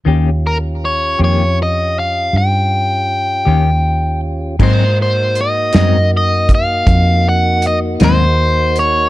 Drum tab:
CC |------------|x-----------|
HH |------------|--xx-xx-xx-x|
SD |------------|---o-----o--|
BD |------------|o----oo-----|